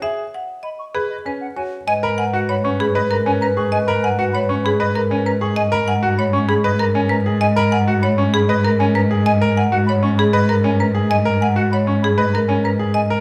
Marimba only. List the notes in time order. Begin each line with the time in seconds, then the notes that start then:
0.02 E5
0.34 F#5
0.63 D#5
0.95 G#4
1.26 B4
1.57 C#5
1.88 D#5
2.18 F#5
2.49 C#5
2.80 G#4
3.11 A#4
3.42 B4
3.72 D#5
4.04 F#5
4.35 C#5
4.66 G#4
4.96 A#4
5.26 B4
5.56 D#5
5.88 F#5
6.19 C#5
6.49 G#4
6.79 A#4
7.09 B4
7.41 D#5
7.72 F#5
8.03 C#5
8.34 G#4
8.65 A#4
8.95 B4
9.26 D#5
9.57 F#5
9.89 C#5
10.19 G#4
10.49 A#4
10.80 B4
11.11 D#5
11.42 F#5
11.73 C#5
12.04 G#4
12.35 A#4
12.65 B4
12.94 D#5